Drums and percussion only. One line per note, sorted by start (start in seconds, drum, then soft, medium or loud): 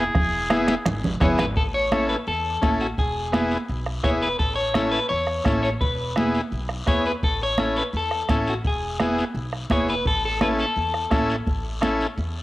0.15 bombo low medium
0.15 bombo rim medium
0.15 low conga medium
0.15 long guiro medium
0.50 bombo rim loud
0.50 high conga medium
0.50 short guiro medium
0.68 bombo rim medium
0.68 high conga medium
0.68 short guiro medium
0.86 bombo rim medium
0.86 low conga medium
0.86 long guiro medium
1.04 low conga medium
1.21 bombo low medium
1.21 bombo rim medium
1.21 low conga medium
1.21 short guiro medium
1.38 bombo rim medium
1.38 low conga medium
1.38 short guiro medium
1.56 bombo low medium
1.56 high conga soft
1.56 long guiro medium
1.91 bombo rim medium
1.91 high conga medium
1.91 short guiro medium
2.10 short guiro medium
2.27 high conga soft
2.27 long guiro medium
2.62 bombo low medium
2.62 bombo rim medium
2.62 high conga medium
2.62 short guiro medium
2.80 short guiro medium
2.98 bombo low medium
2.98 high conga soft
2.98 long guiro medium
3.33 bombo rim medium
3.33 high conga medium
3.33 short guiro medium
3.51 short guiro medium
3.68 high conga soft
3.68 long guiro medium
3.86 bombo rim medium
4.04 bombo low medium
4.04 bombo rim medium
4.04 high conga medium
4.04 short guiro medium
4.22 short guiro medium
4.39 bombo low medium
4.39 high conga soft
4.39 long guiro medium
4.74 bombo rim medium
4.74 high conga medium
4.74 short guiro medium
4.93 short guiro medium
5.10 high conga soft
5.10 long guiro medium
5.27 bombo rim medium
5.45 bombo low medium
5.45 bombo rim medium
5.45 high conga medium
5.45 short guiro medium
5.64 short guiro medium
5.81 bombo low medium
5.81 high conga soft
5.81 long guiro medium
6.16 bombo rim medium
6.16 high conga medium
6.16 short guiro medium
6.34 short guiro medium
6.52 high conga soft
6.52 long guiro medium
6.69 bombo rim medium
6.87 bombo low medium
6.87 bombo rim medium
6.87 high conga medium
6.87 short guiro medium
7.05 short guiro medium
7.23 bombo low medium
7.23 high conga soft
7.23 long guiro medium
7.58 bombo rim medium
7.58 high conga medium
7.58 short guiro medium
7.76 short guiro medium
7.93 high conga soft
7.93 long guiro medium
8.11 bombo rim medium
8.29 bombo low medium
8.29 bombo rim medium
8.29 high conga medium
8.29 short guiro medium
8.47 short guiro medium
8.64 bombo low medium
8.64 high conga soft
8.64 long guiro medium
9.00 bombo rim medium
9.00 high conga medium
9.00 short guiro medium
9.19 short guiro medium
9.35 high conga soft
9.35 long guiro medium
9.53 bombo rim medium
9.70 bombo low medium
9.70 bombo rim medium
9.70 high conga medium
9.70 short guiro medium
9.89 short guiro medium
10.05 bombo low medium
10.05 high conga soft
10.05 long guiro medium
10.41 bombo rim medium
10.41 high conga medium
10.41 short guiro medium
10.58 short guiro medium
10.76 high conga soft
10.76 long guiro medium
10.94 bombo rim medium
11.11 bombo low medium
11.11 bombo rim medium
11.11 high conga medium
11.11 short guiro medium
11.30 short guiro medium
11.47 bombo low medium
11.47 high conga soft
11.47 long guiro medium
11.82 bombo rim medium
11.82 high conga medium
11.82 short guiro medium
12.01 short guiro medium
12.18 high conga soft
12.18 long guiro medium